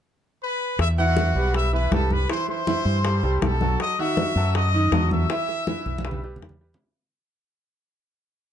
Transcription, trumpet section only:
0.43 B4 B5
0.80 E5 E6
0.99 F#4 F#5
1.56 E5 E6
1.74 B4 B5
1.94 A4 A5
2.12 B4 B5
2.31 C5 C6
2.50 C5 C6
3.44 A4 A5
3.81 D#5 D#6
4.00 E5 E6
4.56 D#5 D#6
5.13 E5 E6

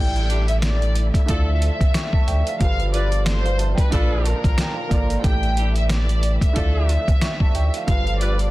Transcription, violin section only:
Already playing: G5
0.48 E5
0.62 D5
1.14 E5
2.61 F5
2.94 D5
3.27 C5
3.79 B4
4.23 A#4
5.22 G5
5.76 E5
5.92 D5
6.42 E5
7.89 F5
8.20 D5

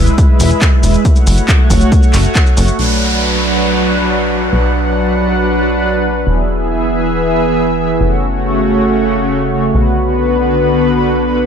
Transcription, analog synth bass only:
0.40 E1
0.83 E1
1.27 F#1
1.70 F#1
2.14 F#1
2.57 F#1
2.79 B1
4.53 B1
6.27 E1
8.01 F#1
9.75 B1

